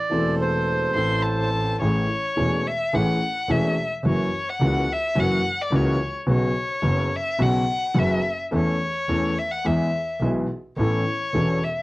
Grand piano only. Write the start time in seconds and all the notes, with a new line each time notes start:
0.10 E1 E2 E3 A3 C4 A4
0.93 A1 A2 E3 A3 C4
0.97 A4
1.81 A1 A2 E3 A3 C#4 G#4
2.36 E1 E2 E3 A3 C#4 G#4
2.93 A1 A2 E3 A3 C#4 G#4
3.49 E1 E2 E3 A3 C#4 G#4
4.05 F#2 E3 F#3 A#3 C#4 F#4
4.61 C#2 C#3 E3 A#3 C#4 F#4
5.15 F#2 E3 F#3 A#3 C#4 F#4
5.72 C#2 C#3 E3 A#3 C#4 F#4
6.26 B1 B2 C#3 F#3 B3 F#4
6.82 F#1 F#2 C#3 F#3 B3 F#4
7.39 B1 B2 C#3 F#3 B3 F#4
7.95 F#1 F#2 C#3 F#3 B3 F#4
8.51 E2 E3 A3 C#4 A4
9.09 E2 E3 A3 C#4 A4
9.65 E2 E3 G#3 B3 G#4
10.22 B1 B2 E3 G#3 B3 G#4
10.79 A1 A2 E3 B3 C#4 A4
11.34 E1 E2 E3 B3 C#4 A4